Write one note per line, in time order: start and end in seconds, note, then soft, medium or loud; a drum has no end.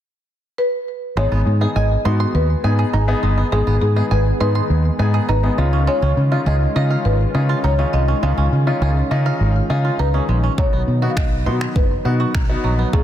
0.58 1.19 B4 medium
1.17 1.26 G#1 loud
1.17 13.04 D#3 medium
1.17 1.26 G#3 medium
1.17 10.54 G#3 medium
1.17 1.48 B3 medium
1.17 5.54 B3 medium
1.17 1.48 D#4 medium
1.17 5.54 G#4 medium
1.17 1.48 G#4 medium
1.17 1.72 C#5 loud
1.32 1.41 G#1 medium
1.32 1.41 B3 medium
1.46 1.65 G#2 medium
1.61 1.92 B3 medium
1.61 1.92 D#4 medium
1.61 1.70 G#4 medium
1.61 1.92 G#4 medium
1.76 1.95 G#1 medium
1.76 2.31 D#5 loud
1.76 1.85 G#5 medium
2.05 2.24 G#2 loud
2.05 2.46 B3 medium
2.05 2.46 D#4 medium
2.05 2.46 F#4 medium
2.05 2.14 C6 medium
2.20 2.29 C6 medium
2.35 2.54 D#2 medium
2.35 3.56 B4 loud
2.64 2.83 G#2 medium
2.64 2.95 B3 medium
2.64 2.95 D#4 medium
2.64 2.95 G#4 medium
2.64 2.73 G#5 medium
2.79 2.88 G#4 medium
2.93 3.13 G#1 medium
2.93 3.02 D#4 medium
3.08 3.39 B3 medium
3.08 3.17 B3 medium
3.08 3.39 D#4 medium
3.08 3.39 G#4 loud
3.23 3.42 G1 medium
3.23 3.32 G#3 medium
3.38 3.47 B3 medium
3.52 3.62 G#1 loud
3.52 3.61 G#3 medium
3.52 3.83 B3 medium
3.52 3.83 D#4 medium
3.52 3.80 G#4 medium
3.52 3.83 G#4 medium
3.67 3.77 G#1 loud
3.67 3.76 B3 medium
3.82 4.01 G#2 loud
3.82 3.95 G#4 medium
3.96 4.27 B3 medium
3.96 4.27 D#4 medium
3.96 4.05 G#4 medium
3.96 4.27 G#4 medium
4.11 4.30 G#1 medium
4.11 4.24 B4 medium
4.11 4.20 G#5 medium
4.40 4.60 G#2 loud
4.40 4.81 B3 medium
4.40 4.82 D#4 medium
4.40 4.82 G#4 medium
4.40 5.27 B4 medium
4.40 4.49 C6 medium
4.55 4.64 C6 medium
4.70 4.89 D#2 medium
4.99 5.18 G#2 loud
4.99 5.30 B3 medium
4.99 5.30 D#4 medium
4.99 5.30 G#4 medium
4.99 5.08 G#5 medium
5.14 5.23 G#4 medium
5.29 5.48 G#1 medium
5.29 5.38 D#4 medium
5.29 5.89 B4 medium
5.43 5.58 B3 medium
5.43 5.52 B3 medium
5.43 5.57 D#4 medium
5.43 5.58 G#4 medium
5.58 5.87 C#2 loud
5.58 5.67 G#3 medium
5.58 6.17 C#4 medium
5.58 10.54 C#4 medium
5.58 6.17 D#4 medium
5.58 10.54 F4 medium
5.58 6.17 F4 medium
5.73 5.82 C#4 medium
5.87 5.96 G#3 medium
5.87 6.48 C#5 loud
6.02 6.12 C#2 loud
6.02 6.11 C#4 medium
6.17 6.36 C#3 loud
6.31 6.62 C#4 medium
6.31 6.62 D#4 medium
6.31 6.41 F4 medium
6.31 6.62 F4 medium
6.46 6.65 C#2 loud
6.46 6.55 G#4 medium
6.46 7.07 D#5 medium
6.76 6.95 C#3 medium
6.76 7.17 C#4 medium
6.76 7.17 D#4 medium
6.76 7.17 F4 medium
6.76 6.85 D#5 medium
6.90 6.99 F5 medium
7.05 7.24 G#1 medium
7.05 7.60 B4 medium
7.34 7.54 C#3 loud
7.34 7.65 C#4 medium
7.34 7.65 D#4 medium
7.34 7.65 F4 medium
7.34 7.43 G#4 medium
7.49 7.58 F4 medium
7.64 7.83 C#2 medium
7.64 7.73 D#4 medium
7.64 7.91 C#5 medium
7.78 8.09 C#4 medium
7.78 7.88 C#4 medium
7.78 8.09 D#4 medium
7.78 8.10 F4 medium
7.93 8.13 C2 medium
7.93 8.02 G#3 medium
7.93 9.66 D#5 medium
8.08 8.17 C#4 medium
8.23 8.32 C#2 medium
8.23 8.32 G#3 medium
8.23 8.53 C#4 medium
8.23 8.54 D#4 medium
8.23 8.54 F4 medium
8.37 8.47 C#2 medium
8.37 8.46 C#4 medium
8.52 8.71 C#3 medium
8.67 8.98 C#4 medium
8.67 8.98 D#4 medium
8.67 8.76 F4 medium
8.67 8.98 F4 medium
8.82 9.01 C#2 loud
8.82 8.91 G#4 medium
9.11 9.30 C#3 medium
9.11 9.52 C#4 medium
9.11 9.52 D#4 medium
9.11 9.52 F4 loud
9.11 9.20 D#5 medium
9.26 9.35 F5 medium
9.40 9.60 G#1 medium
9.70 9.89 C#3 loud
9.70 10.00 C#4 medium
9.70 10.01 D#4 medium
9.70 10.01 F4 loud
9.70 9.79 G#4 medium
9.85 9.94 F4 medium
9.99 10.18 C#2 medium
9.99 10.08 D#4 medium
9.99 10.54 B4 medium
10.14 10.45 C#4 medium
10.14 10.23 C#4 medium
10.14 10.45 D#4 medium
10.14 10.45 G#4 medium
10.29 10.48 A#1 medium
10.29 10.38 G#3 medium
10.43 10.52 C#4 medium
10.58 10.68 B1 medium
10.58 10.67 F#3 medium
10.58 13.04 F#3 medium
10.58 10.89 B3 medium
10.58 13.04 B3 medium
10.58 10.89 D#4 medium
10.58 13.04 D#4 medium
10.58 10.89 F#4 medium
10.58 11.11 C#5 loud
10.58 kick loud
10.73 10.82 B1 medium
10.73 10.82 B3 medium
10.88 11.07 B2 medium
11.02 11.33 B3 medium
11.02 11.33 D#4 medium
11.02 11.11 F#4 medium
11.02 11.33 F#4 medium
11.10 11.17 F5 medium
11.17 11.48 B1 medium
11.17 11.72 D#5 loud
11.17 11.26 F#5 medium
11.17 finger snap loud
11.17 kick loud
11.46 11.65 B2 medium
11.46 11.87 B3 medium
11.46 11.87 D#4 medium
11.46 11.87 F#4 medium
11.46 11.55 C6 medium
11.61 11.70 C6 medium
11.61 finger snap medium
11.76 11.95 F#1 medium
11.76 12.89 B4 loud
11.76 kick loud
12.05 12.24 B2 loud
12.05 12.36 B3 medium
12.05 12.36 D#4 medium
12.05 12.36 F#4 medium
12.05 12.14 F#5 medium
12.20 12.29 F#4 medium
12.35 12.54 B1 medium
12.35 12.44 D#4 medium
12.35 finger snap loud
12.35 kick loud
12.49 12.80 B3 medium
12.49 12.58 B3 medium
12.49 12.80 D#4 medium
12.49 12.80 F#4 loud
12.64 12.83 A#1 medium
12.64 12.73 F#3 medium
12.79 12.88 B3 medium
12.93 13.03 B1 loud
12.93 13.02 F#3 medium
12.93 13.04 B3 medium
12.93 13.04 D#4 medium
12.93 13.04 F4 medium
12.93 13.04 G#4 medium
12.93 kick loud